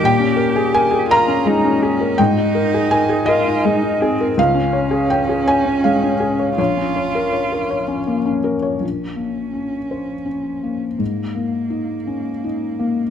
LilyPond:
<<
  \new Staff \with { instrumentName = "Felt piano" } { \time 6/8 \key bes \dorian \tempo 4. = 55 << { g''4 aes''8 bes''4. | g''4 aes''8 ees''4. | f''4 g''8 aes''8 f''4 | des''4. r4. |
r2. | r2. | } \\ { bes,16 des'16 bes'16 aes'16 bes'16 aes'16 bes'16 des'16 aes16 des'16 aes'16 bes'16 | aes,16 ees'16 bes'16 aes'16 bes'16 aes'16 bes'16 ees'16 aes16 ees'16 aes'16 bes'16 | des,16 des'16 des''16 aes'16 des''16 aes'16 des''16 des'16 aes16 des'16 aes'16 des''16 | bes,,16 des'16 des''16 bes'16 des''16 bes'16 des''16 des'16 bes16 des'16 bes'16 des''16 |
bes,,8 bes8 des'8 c''8 des'8 bes8 | aes,8 bes8 ees'8 des'8 ees'8 bes8 | } >> }
  \new Staff \with { instrumentName = "Cello" } { \time 6/8 \key bes \dorian g'4. f'8 ees'8 des'8 | ees'4. f'8 ees'8 c'8 | des'2. | f'2~ f'16 r8. |
des'2. | bes2. | }
>>